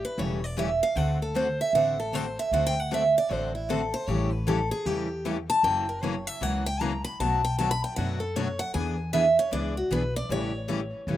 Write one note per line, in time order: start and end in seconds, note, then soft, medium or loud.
0.05 0.18 B4 medium
0.18 0.80 E1 medium
0.18 0.39 C#3 medium
0.18 0.39 E3 medium
0.18 0.39 G3 medium
0.18 0.39 A3 medium
0.18 0.39 C#4 medium
0.18 0.40 E4 medium
0.18 0.40 G4 medium
0.18 0.40 A4 medium
0.18 0.44 C#5 medium
0.44 0.57 D5 medium
0.57 0.68 C#3 medium
0.57 0.68 E3 medium
0.57 0.68 G3 medium
0.57 0.68 A3 medium
0.57 0.68 C#4 medium
0.57 0.68 E4 medium
0.57 0.69 G4 medium
0.57 0.69 A4 medium
0.57 0.81 E5 medium
0.83 0.97 F5 medium
0.96 1.58 D2 medium
0.96 1.17 D3 medium
0.96 1.17 A3 medium
0.96 1.17 C4 medium
0.96 1.18 F#4 medium
0.96 1.18 A4 medium
0.96 1.20 F#5 medium
1.22 1.36 A4 soft
1.34 1.46 D3 medium
1.34 1.46 A3 medium
1.34 1.46 C4 medium
1.34 1.46 F#4 medium
1.34 1.46 A4 medium
1.34 1.59 C5 medium
1.61 1.74 E5 medium
1.73 2.36 A1 medium
1.73 1.95 D3 medium
1.73 1.95 A3 medium
1.73 1.95 C4 medium
1.73 1.96 F#4 medium
1.73 1.96 A4 medium
1.73 1.98 F#5 medium
2.00 2.15 A4 medium
2.12 2.24 D3 medium
2.12 2.24 A3 medium
2.12 2.24 C4 medium
2.12 2.25 F#4 medium
2.12 2.25 A4 medium
2.12 2.37 C5 medium
2.39 2.53 E5 medium
2.51 3.14 D2 medium
2.51 2.73 D3 medium
2.51 2.73 A3 medium
2.51 2.73 C4 medium
2.51 2.74 F#4 medium
2.51 2.74 A4 medium
2.51 2.65 F#5 medium
2.67 2.80 G5 medium
2.80 2.91 F#5 medium
2.92 3.03 D3 medium
2.92 3.03 A3 medium
2.92 3.03 C4 medium
2.92 3.03 F#4 medium
2.92 3.03 A4 medium
2.92 3.16 E5 medium
3.18 3.32 D5 medium
3.31 3.93 A1 medium
3.31 3.52 D3 medium
3.31 3.52 A3 medium
3.31 3.52 C4 medium
3.31 3.52 F#4 medium
3.31 3.52 A4 medium
3.31 3.54 C5 medium
3.55 3.69 E4 soft
3.69 3.80 D3 medium
3.69 3.80 A3 medium
3.69 3.81 C4 medium
3.69 3.81 F#4 medium
3.69 3.93 A4 medium
3.69 3.81 A4 medium
3.94 4.08 C5 loud
4.08 4.70 A1 medium
4.08 4.29 C#3 medium
4.08 4.30 E3 medium
4.08 4.30 G3 medium
4.08 4.29 A3 medium
4.08 4.30 C#4 medium
4.08 4.30 E4 medium
4.08 4.29 G4 medium
4.08 4.31 A4 medium
4.08 4.32 C#5 medium
4.32 4.47 B4 medium
4.47 4.58 C#3 medium
4.47 4.58 E3 medium
4.47 4.58 G3 medium
4.47 4.58 A3 medium
4.47 4.58 C#4 medium
4.47 4.59 E4 medium
4.47 4.58 G4 medium
4.47 4.71 A4 medium
4.47 4.59 A4 loud
4.71 4.86 G#4 medium
4.85 5.48 E2 medium
4.85 5.06 C#3 medium
4.85 5.07 E3 medium
4.85 5.07 G3 medium
4.85 5.07 A3 medium
4.85 5.07 C#4 medium
4.85 5.07 E4 medium
4.85 5.25 G4 medium
4.85 5.07 G4 medium
4.85 5.07 A4 medium
5.25 5.36 C#3 medium
5.25 5.36 E3 medium
5.25 5.36 G3 medium
5.25 5.36 A3 medium
5.25 5.36 C#4 medium
5.25 5.37 E4 loud
5.25 5.36 G4 medium
5.25 5.37 A4 loud
5.50 5.64 A5 loud
5.63 6.26 F#1 medium
5.63 5.84 C#3 medium
5.63 5.85 E3 medium
5.63 5.84 F#3 medium
5.63 5.85 A#3 medium
5.63 5.84 C#4 medium
5.63 5.85 E4 medium
5.63 5.85 F#4 medium
5.63 5.85 A#4 medium
5.63 5.87 G5 medium
5.89 6.03 A#4 medium
6.03 6.14 C#3 medium
6.03 6.14 E3 medium
6.03 6.14 F#3 medium
6.03 6.14 A#3 medium
6.03 6.14 C#4 medium
6.03 6.14 E4 medium
6.03 6.14 F#4 medium
6.03 6.14 A#4 medium
6.03 6.27 C#5 medium
6.27 6.43 E5 medium
6.41 7.03 C#2 medium
6.41 6.62 C#3 medium
6.41 6.62 E3 medium
6.41 6.62 F#3 medium
6.41 6.62 A#3 medium
6.41 6.63 C#4 medium
6.41 6.63 E4 medium
6.41 6.62 F#4 medium
6.41 6.63 A#4 medium
6.41 6.65 F#5 medium
6.66 6.81 G5 loud
6.80 6.92 C#3 medium
6.80 6.92 E3 medium
6.80 6.91 F#3 medium
6.80 6.92 A#3 medium
6.80 6.91 C#4 medium
6.80 6.92 E4 medium
6.80 6.92 F#4 medium
6.80 6.92 A#4 medium
6.80 7.04 A#5 medium
7.04 7.19 B5 loud
7.20 7.82 B1 medium
7.20 7.40 B2 medium
7.20 7.41 F#3 medium
7.20 7.41 A3 medium
7.20 7.41 D4 medium
7.20 7.41 F#4 medium
7.20 7.41 B4 medium
7.20 7.43 A5 medium
7.45 7.58 G5 medium
7.58 7.70 B2 medium
7.58 7.70 F#3 medium
7.58 7.70 A3 medium
7.58 7.70 D4 medium
7.58 7.70 F#4 medium
7.58 7.70 B4 medium
7.58 7.71 A5 medium
7.71 7.83 B5 loud
7.84 7.96 G5 medium
7.96 8.59 F#2 medium
7.96 8.18 B2 medium
7.96 8.18 F#3 medium
7.96 8.18 A3 medium
7.96 8.19 D4 medium
7.96 8.19 F#4 medium
7.96 8.19 B4 medium
7.96 8.20 F#5 medium
8.20 8.35 A4 medium
8.36 8.47 B2 medium
8.36 8.47 F#3 medium
8.36 8.47 A3 medium
8.36 8.48 D4 medium
8.36 8.47 F#4 medium
8.36 8.48 B4 medium
8.36 8.59 C#5 medium
8.59 8.74 F#5 loud
8.74 9.37 E2 medium
8.74 8.95 E3 medium
8.74 8.95 B3 medium
8.74 8.96 D4 medium
8.74 8.96 G#4 medium
8.74 8.96 B4 medium
8.74 9.10 G#5 medium
9.13 9.25 E3 medium
9.13 9.24 B3 medium
9.13 9.25 D4 medium
9.13 9.25 G#4 medium
9.13 9.25 B4 loud
9.13 9.36 E5 medium
9.39 9.52 C#5 medium
9.52 9.85 C#2 medium
9.52 9.73 E3 medium
9.52 9.73 B3 medium
9.52 9.74 D4 medium
9.52 9.74 G#4 medium
9.52 9.74 B4 medium
9.52 9.75 D5 medium
9.77 9.91 F#4 medium
9.91 10.24 B1 medium
9.91 10.02 E3 medium
9.91 10.02 B3 medium
9.91 10.02 D4 medium
9.91 10.02 G#4 medium
9.91 10.15 B4 medium
9.91 10.03 B4 loud
10.16 10.30 D5 loud
10.29 10.91 A1 medium
10.29 10.51 C#3 medium
10.29 10.51 E3 medium
10.29 10.50 G3 medium
10.29 10.51 A3 medium
10.29 10.51 C#4 medium
10.29 10.51 E4 medium
10.29 10.51 G4 medium
10.29 10.51 A4 medium
10.29 11.17 C#5 medium
10.68 10.79 C#3 medium
10.68 10.79 E3 medium
10.68 10.79 G3 loud
10.68 10.79 A3 medium
10.68 10.79 C#4 medium
10.68 10.80 E4 medium
10.68 10.80 G4 medium
10.68 10.80 A4 loud
11.07 11.17 E1 medium
11.07 11.17 C#3 medium
11.07 11.17 E3 medium
11.07 11.17 G3 medium
11.07 11.17 A3 medium
11.07 11.17 C#4 medium
11.07 11.17 E4 medium
11.07 11.17 G4 medium
11.07 11.17 A4 medium